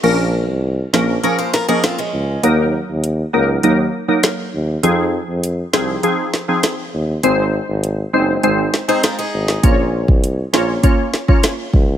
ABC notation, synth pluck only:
X:1
M:4/4
L:1/16
Q:1/4=100
K:Bbm
V:1 name="Synth pluck"
[F,B,DB]4 z2 [F,B,DB] z [F,B,DB] z2 [F,B,DB] z4 | [G,B,EB]4 z2 [G,B,EB] z [G,B,EB] z2 [G,B,EB] z4 | [F,CEA]4 z2 [F,CEA] z [F,CEA] z2 [F,CEA] z4 | [A,CEc]4 z2 [A,CEc] z [A,CEc] z2 [A,CEc] z4 |
[B,DFd]4 z2 [B,DFd] z [B,DFd] z2 [B,DFd] z4 |]